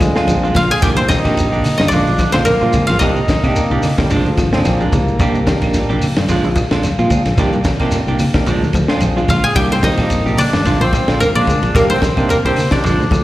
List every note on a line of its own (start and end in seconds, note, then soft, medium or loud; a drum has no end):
0.00 0.12 D2 medium
0.00 0.13 F3 medium
0.00 0.39 G#3 loud
0.00 kick medium
0.00 snare soft
0.00 ride bell medium
0.00 high conga medium
0.00 claves medium
0.00 shekere medium
0.14 0.38 D3 medium
0.14 0.32 G#3 soft
0.14 0.47 C4 medium
0.14 0.47 D4 medium
0.14 0.47 F4 medium
0.14 0.31 F4 medium
0.14 0.48 G#4 loud
0.14 muted fingered electric bass stroke soft
0.14 muted clean electric guitar stroke medium
0.14 snare medium
0.14 high conga medium
0.14 shekere soft
0.27 0.50 A#1 loud
0.27 ride bell medium
0.27 high conga medium
0.27 claves medium
0.27 shekere medium
0.43 0.53 F3 medium
0.43 0.59 G#3 soft
0.43 0.59 D4 soft
0.43 0.59 F4 medium
0.43 shekere soft
0.54 0.67 A#1 medium
0.54 0.78 F3 medium
0.54 0.70 F4 medium
0.54 2.00 F5 medium
0.54 kick medium
0.54 snare soft
0.54 ride bell medium
0.54 low conga medium
0.54 shekere medium
0.70 0.82 G#4 medium
0.70 0.88 G#5 loud
0.70 snare soft
0.82 1.16 C2 loud
0.82 1.00 D#3 medium
0.82 1.05 G3 loud
0.82 1.00 A#3 medium
0.82 1.01 D4 medium
0.82 0.90 G4 medium
0.82 0.88 G5 loud
0.82 muted clean electric guitar stroke medium
0.82 kick medium
0.82 snare soft
0.82 ride bell medium
0.82 claves medium
0.82 shekere medium
0.97 1.09 C4 medium
0.97 1.02 D#4 medium
0.97 1.03 G4 medium
0.97 2.32 C5 loud
0.97 high conga medium
0.97 shekere soft
1.08 1.33 D#3 medium
1.08 1.53 A#3 medium
1.08 1.53 C4 medium
1.08 1.76 D#4 medium
1.08 1.54 D#4 medium
1.08 1.54 G4 medium
1.08 1.77 D#5 medium
1.08 kick medium
1.08 snare medium
1.08 ride bell medium
1.08 high conga loud
1.08 shekere medium
1.25 1.46 A#1 medium
1.25 1.41 A#3 soft
1.25 1.41 D4 medium
1.25 1.40 G4 medium
1.25 kick medium
1.25 snare soft
1.25 ride bell medium
1.25 claves medium
1.25 shekere soft
1.37 ride bell medium
1.37 shekere loud
1.52 1.62 A#1 loud
1.52 1.68 A#3 soft
1.52 1.68 D4 medium
1.52 1.68 G4 medium
1.52 shekere soft
1.64 muted fingered electric bass stroke soft
1.64 open hi-hat medium
1.64 low conga medium
1.64 claves medium
1.64 shekere medium
1.78 1.90 G2 loud
1.78 1.90 D#3 medium
1.78 1.91 D#4 medium
1.78 1.94 D#5 medium
1.78 snare medium
1.78 ride bell medium
1.78 high conga medium
1.78 shekere soft
1.88 2.10 F3 medium
1.88 2.10 G#3 medium
1.88 2.31 D4 medium
1.88 3.05 D5 medium
1.88 ride bell medium
1.88 shekere medium
1.92 2.04 A#1 loud
1.92 2.15 D3 medium
1.92 2.10 D4 medium
1.92 2.10 F4 medium
2.06 2.17 A#1 medium
2.06 shekere soft
2.18 2.32 F3 medium
2.18 kick medium
2.18 snare soft
2.18 ride bell medium
2.18 high conga loud
2.18 claves medium
2.18 shekere medium
2.32 2.44 A#1 medium
2.32 2.57 D3 medium
2.32 2.50 G#3 soft
2.32 2.39 C4 medium
2.32 2.50 D4 soft
2.32 2.49 F4 medium
2.32 2.38 C5 medium
2.32 snare medium
2.32 ride bell medium
2.32 high conga medium
2.32 low conga medium
2.32 shekere soft
2.45 2.86 A#3 medium
2.45 4.29 A#4 loud
2.45 ride bell medium
2.45 high conga medium
2.45 claves medium
2.45 shekere loud
2.60 2.72 A#2 loud
2.60 2.72 F3 medium
2.60 2.77 G#3 soft
2.60 2.77 D4 soft
2.60 2.77 F4 medium
2.60 shekere soft
2.73 2.97 G#3 medium
2.73 2.85 C4 medium
2.73 2.86 D4 medium
2.73 2.86 F4 medium
2.73 2.86 G#4 medium
2.73 kick medium
2.73 ride bell medium
2.73 high conga medium
2.73 low conga medium
2.73 shekere medium
2.87 2.99 A#1 loud
2.87 2.99 F4 medium
2.87 4.31 F5 loud
2.87 snare soft
2.87 ride bell medium
2.87 shekere soft
2.99 3.22 C2 loud
2.99 3.19 D#3 medium
2.99 3.23 G3 loud
2.99 3.19 A#3 medium
2.99 3.13 A#3 medium
2.99 3.19 D4 medium
2.99 3.13 D4 medium
2.99 4.06 D#4 medium
2.99 3.13 D#4 medium
2.99 3.19 G4 medium
2.99 3.13 G4 medium
2.99 4.54 D#5 medium
2.99 kick medium
2.99 ride bell medium
2.99 claves medium
2.99 shekere loud
3.16 shekere soft
3.28 3.51 D#3 medium
3.28 3.34 D#4 medium
3.28 3.35 G4 medium
3.28 kick medium
3.28 snare medium
3.28 ride bell medium
3.28 high conga loud
3.28 shekere medium
3.43 3.53 C3 medium
3.43 3.64 A#3 medium
3.43 3.60 A#3 medium
3.43 3.65 D4 medium
3.43 3.59 D4 medium
3.43 3.65 D#4 medium
3.43 3.59 G4 medium
3.43 3.65 G4 medium
3.43 kick medium
3.43 snare soft
3.43 ride bell soft
3.43 claves medium
3.43 shekere soft
3.56 3.95 A#3 medium
3.56 muted fingered electric bass stroke soft
3.56 ride bell medium
3.56 shekere medium
3.71 3.81 C2 loud
3.71 3.93 C3 medium
3.71 3.87 A#3 medium
3.71 3.87 D4 medium
3.71 3.87 G4 medium
3.71 shekere soft
3.82 muted fingered electric bass stroke soft
3.82 snare soft
3.82 open hi-hat medium
3.82 low conga medium
3.82 claves medium
3.82 shekere medium
3.97 4.08 C2 loud
3.97 4.09 D#3 medium
3.97 4.13 G3 medium
3.97 4.10 A#3 loud
3.97 4.11 D4 medium
3.97 4.11 D#4 medium
3.97 4.11 G4 loud
3.97 kick medium
3.97 snare medium
3.97 ride bell medium
3.97 high conga medium
3.97 shekere soft
4.10 4.23 A#1 loud
4.10 4.33 D3 medium
4.10 4.28 F3 medium
4.10 4.53 F3 medium
4.10 4.29 G#3 medium
4.10 4.29 D4 medium
4.10 ride bell medium
4.10 shekere medium
4.26 4.35 D2 medium
4.26 shekere soft
4.37 4.62 G#1 medium
4.37 4.51 F3 medium
4.37 kick medium
4.37 snare soft
4.37 ride bell medium
4.37 high conga loud
4.37 claves medium
4.37 shekere medium
4.53 4.69 G#3 soft
4.53 4.84 C4 medium
4.53 4.67 C4 loud
4.53 4.68 D4 medium
4.53 4.85 D4 medium
4.53 4.85 F4 medium
4.53 4.85 G#4 loud
4.53 snare medium
4.53 high conga medium
4.53 low conga medium
4.53 shekere soft
4.65 4.90 A#1 medium
4.65 5.75 A#3 medium
4.65 snare soft
4.65 ride bell medium
4.65 high conga medium
4.65 claves medium
4.65 shekere medium
4.80 4.91 F3 medium
4.80 4.96 G#3 medium
4.80 4.96 D4 medium
4.80 shekere soft
4.92 5.17 C2 medium
4.92 5.15 G#3 medium
4.92 kick medium
4.92 ride bell medium
4.92 low conga medium
4.92 shekere medium
5.08 shekere soft
5.19 5.53 C2 loud
5.19 5.42 G3 medium
5.19 5.38 A#3 medium
5.19 5.38 D4 medium
5.19 5.38 G4 medium
5.19 muted clean electric guitar stroke medium
5.19 kick loud
5.19 ride bell medium
5.19 claves medium
5.19 shekere medium
5.34 5.40 D#4 medium
5.34 5.40 G4 medium
5.34 shekere soft
5.47 5.69 D#3 medium
5.47 5.91 A#3 medium
5.47 5.91 D4 medium
5.47 5.91 D#4 medium
5.47 5.92 G4 medium
5.47 kick medium
5.47 snare medium
5.47 ride bell medium
5.47 high conga loud
5.47 shekere medium
5.62 5.84 A#1 medium
5.62 5.78 A#3 medium
5.62 5.78 D4 medium
5.62 kick medium
5.62 snare soft
5.62 ride bell medium
5.62 claves medium
5.62 shekere soft
5.74 snare soft
5.74 ride bell medium
5.74 shekere medium
5.89 6.00 A#1 loud
5.89 6.12 C3 medium
5.89 6.05 A#3 soft
5.89 6.05 D4 medium
5.89 6.05 G4 medium
5.89 shekere soft
6.02 open hi-hat medium
6.02 low conga medium
6.02 claves medium
6.02 shekere medium
6.16 6.27 G2 loud
6.16 6.27 D#3 medium
6.16 snare medium
6.16 ride bell medium
6.16 high conga medium
6.16 shekere soft
6.28 6.41 A#1 loud
6.28 6.51 D3 medium
6.28 6.47 F3 medium
6.28 6.47 G#3 medium
6.28 6.47 D4 medium
6.28 6.47 F4 medium
6.28 ride bell medium
6.28 shekere medium
6.44 6.54 A#1 loud
6.44 shekere soft
6.56 muted clean electric guitar stroke medium
6.56 kick medium
6.56 ride bell medium
6.56 high conga loud
6.56 claves medium
6.56 shekere medium
6.71 6.81 A#1 medium
6.71 6.93 D3 medium
6.71 6.87 G#3 soft
6.71 6.87 D4 medium
6.71 6.87 F4 medium
6.71 snare medium
6.71 ride bell soft
6.71 high conga medium
6.71 shekere soft
6.83 snare soft
6.83 ride bell medium
6.83 high conga medium
6.83 claves medium
6.83 shekere medium
6.99 7.08 A#2 loud
6.99 7.09 F3 medium
6.99 7.15 G#3 soft
6.99 7.14 F4 medium
6.99 shekere soft
7.10 7.33 G#3 medium
7.10 7.22 C4 medium
7.10 7.23 D4 medium
7.10 7.23 F4 medium
7.10 7.23 G#4 loud
7.10 kick medium
7.10 ride bell soft
7.10 low conga loud
7.10 shekere medium
7.25 7.36 A#1 loud
7.25 snare soft
7.25 ride bell medium
7.25 shekere soft
7.38 7.59 C2 loud
7.38 7.56 D#3 medium
7.38 7.60 G3 medium
7.38 7.50 A#3 medium
7.38 7.56 A#3 medium
7.38 7.50 D4 medium
7.38 7.56 D4 medium
7.38 7.50 D#4 medium
7.38 7.57 G4 medium
7.38 7.51 G4 loud
7.38 kick loud
7.38 snare soft
7.38 ride bell medium
7.38 claves medium
7.38 shekere medium
7.53 high conga medium
7.53 shekere soft
7.64 7.88 D#3 medium
7.64 7.71 D#4 medium
7.64 7.72 G4 loud
7.64 kick medium
7.64 snare medium
7.64 ride bell medium
7.64 high conga loud
7.64 shekere medium
7.79 7.90 C3 medium
7.79 8.01 A#3 medium
7.79 7.97 A#3 medium
7.79 8.01 D4 medium
7.79 7.97 D4 medium
7.79 8.01 D#4 medium
7.79 8.01 F4 loud
7.79 7.96 G4 medium
7.79 kick medium
7.79 snare soft
7.79 ride bell soft
7.79 claves medium
7.79 shekere soft
7.91 muted fingered electric bass stroke soft
7.91 snare soft
7.91 ride bell medium
7.91 shekere medium
8.07 8.17 C2 medium
8.07 8.30 C3 medium
8.07 8.24 A#3 medium
8.07 8.24 D4 medium
8.07 8.23 G4 medium
8.07 shekere soft
8.19 open hi-hat medium
8.19 low conga medium
8.19 claves medium
8.19 shekere medium
8.34 8.44 C2 medium
8.34 8.46 D#3 medium
8.34 8.47 A#3 medium
8.34 8.48 D4 medium
8.34 8.48 D#4 medium
8.34 8.48 G4 loud
8.34 kick medium
8.34 snare medium
8.34 ride bell medium
8.34 high conga medium
8.34 shekere soft
8.46 8.59 A#1 loud
8.46 8.70 D3 medium
8.46 8.65 F3 medium
8.46 8.65 G#3 medium
8.46 8.66 D4 medium
8.46 muted clean electric guitar stroke medium
8.46 ride bell medium
8.46 shekere medium
8.62 8.72 D2 medium
8.62 high conga medium
8.62 shekere soft
8.73 8.86 D2 medium
8.73 8.87 F3 medium
8.73 kick medium
8.73 ride bell soft
8.73 high conga loud
8.73 claves medium
8.73 shekere medium
8.88 9.12 D3 medium
8.88 9.05 G#3 soft
8.88 9.21 C4 medium
8.88 9.21 D4 medium
8.88 9.05 D4 medium
8.88 9.05 F4 medium
8.88 9.21 F4 medium
8.88 9.21 G#4 medium
8.88 muted fingered electric bass stroke soft
8.88 snare medium
8.88 shekere soft
9.00 9.23 A#1 loud
9.00 ride bell medium
9.00 high conga medium
9.00 claves medium
9.00 shekere medium
9.17 9.27 F3 medium
9.17 9.33 G#3 soft
9.17 9.33 D4 soft
9.17 9.32 F4 medium
9.17 shekere soft
9.28 9.41 A#1 loud
9.28 9.51 G#3 medium
9.28 9.44 F4 medium
9.28 10.74 F5 medium
9.28 kick medium
9.28 ride bell medium
9.28 high conga medium
9.28 low conga medium
9.28 shekere medium
9.44 9.57 G#4 medium
9.44 9.62 G#5 loud
9.44 shekere soft
9.55 9.89 C2 loud
9.55 9.74 D#3 medium
9.55 9.78 G3 loud
9.55 9.74 A#3 medium
9.55 9.74 D4 medium
9.55 9.75 G4 medium
9.55 9.72 G4 medium
9.55 10.90 G5 loud
9.55 kick loud
9.55 ride bell medium
9.55 claves medium
9.55 shekere medium
9.71 9.84 C4 medium
9.71 9.76 D#4 medium
9.71 9.77 G4 medium
9.71 10.81 C5 loud
9.71 snare soft
9.71 shekere soft
9.83 10.06 D#3 medium
9.83 10.27 A#3 medium
9.83 10.27 C4 medium
9.83 10.28 D#4 medium
9.83 10.35 D#4 medium
9.83 10.28 F4 medium
9.83 10.44 D#5 loud
9.83 kick medium
9.83 snare medium
9.83 ride bell medium
9.83 high conga loud
9.83 shekere medium
9.97 10.20 A#1 medium
9.97 10.15 A#3 medium
9.97 10.14 D4 medium
9.97 10.14 G4 medium
9.97 kick medium
9.97 snare soft
9.97 ride bell medium
9.97 claves medium
9.97 shekere soft
10.10 ride bell medium
10.10 shekere medium
10.26 10.36 A#1 medium
10.26 10.48 C3 medium
10.26 10.42 A#3 soft
10.26 10.42 D4 medium
10.26 10.41 G4 medium
10.26 shekere soft
10.37 10.79 D4 medium
10.37 11.35 D5 loud
10.37 muted fingered electric bass stroke soft
10.37 open hi-hat medium
10.37 low conga medium
10.37 claves medium
10.37 shekere medium
10.53 10.63 G2 loud
10.53 10.64 D#3 medium
10.53 snare medium
10.53 ride bell medium
10.53 high conga medium
10.53 shekere soft
10.65 10.78 A#1 loud
10.65 10.88 D3 medium
10.65 10.83 F3 medium
10.65 10.83 G#3 medium
10.65 10.84 D4 medium
10.65 10.84 F4 medium
10.65 ride bell medium
10.65 shekere medium
10.81 10.90 A#1 medium
10.81 11.19 C4 medium
10.81 11.89 C5 medium
10.81 high conga medium
10.81 shekere soft
10.93 11.06 F3 medium
10.93 kick medium
10.93 snare soft
10.93 ride bell medium
10.93 high conga loud
10.93 claves medium
10.93 shekere medium
11.08 11.18 A#1 medium
11.08 11.30 D3 medium
11.08 11.24 G#3 soft
11.08 11.24 D4 medium
11.08 11.24 F4 medium
11.08 snare medium
11.08 ride bell medium
11.08 shekere soft
11.20 11.29 A#3 medium
11.20 11.26 A#4 medium
11.20 ride bell medium
11.20 high conga medium
11.20 claves medium
11.20 shekere medium
11.35 11.45 A#2 medium
11.35 11.45 F3 medium
11.35 11.51 G#3 soft
11.35 11.51 D4 soft
11.35 11.74 D4 medium
11.35 11.51 F4 medium
11.35 12.71 D5 loud
11.35 shekere soft
11.47 11.70 G#3 medium
11.47 11.59 C4 medium
11.47 11.59 D4 medium
11.47 11.60 F4 medium
11.47 11.60 G#4 medium
11.47 kick medium
11.47 ride bell medium
11.47 high conga medium
11.47 low conga medium
11.47 shekere medium
11.63 11.72 A#1 loud
11.63 ride bell medium
11.63 shekere soft
11.74 11.96 C2 loud
11.74 11.92 D#3 medium
11.74 11.97 G3 loud
11.74 11.86 A#3 medium
11.74 11.93 A#3 medium
11.74 11.87 D4 medium
11.74 11.93 D4 medium
11.74 11.87 D#4 medium
11.74 11.93 G4 medium
11.74 11.87 G4 medium
11.74 11.81 A#4 medium
11.74 kick loud
11.74 snare soft
11.74 ride bell medium
11.74 claves medium
11.74 shekere loud
11.79 11.85 A#3 medium
11.90 12.45 C5 loud
11.90 high conga medium
11.90 shekere soft
11.94 12.29 C4 medium
12.02 12.25 D#3 medium
12.02 12.08 D#4 medium
12.02 12.09 G4 medium
12.02 kick medium
12.02 snare medium
12.02 ride bell medium
12.02 high conga loud
12.02 shekere medium
12.16 12.27 C3 medium
12.16 12.37 A#3 medium
12.16 12.33 A#3 soft
12.16 12.38 D4 medium
12.16 12.33 D4 medium
12.16 12.38 D#4 medium
12.16 12.33 G4 medium
12.16 12.39 G4 medium
12.16 kick medium
12.16 ride bell soft
12.16 claves medium
12.16 shekere soft
12.29 12.38 A#3 medium
12.29 12.36 A#4 medium
12.29 muted fingered electric bass stroke soft
12.29 ride bell medium
12.29 shekere medium
12.45 12.54 C2 loud
12.45 12.67 C3 medium
12.45 12.61 A#3 soft
12.45 12.71 C4 medium
12.45 12.61 D4 medium
12.45 12.60 G4 medium
12.45 13.24 C5 medium
12.45 shekere soft
12.56 open hi-hat medium
12.56 low conga medium
12.56 claves medium
12.56 shekere medium
12.71 12.81 C2 loud
12.71 12.83 D#3 medium
12.71 12.84 A#3 medium
12.71 12.84 D4 medium
12.71 13.24 D4 medium
12.71 12.85 D#4 medium
12.71 12.85 G4 medium
12.71 13.24 D5 medium
12.71 kick medium
12.71 snare medium
12.71 ride bell medium
12.71 high conga medium
12.71 shekere soft
12.84 12.96 A#1 loud
12.84 13.06 D3 medium
12.84 13.02 F3 medium
12.84 13.02 G#3 medium
12.84 13.02 D4 medium
12.84 ride bell medium
12.84 shekere medium
12.99 13.09 D2 medium
12.99 shekere soft
13.11 13.23 D2 medium
13.11 13.24 F3 medium
13.11 kick medium
13.11 snare soft
13.11 ride bell soft
13.11 high conga loud
13.11 claves medium
13.11 shekere medium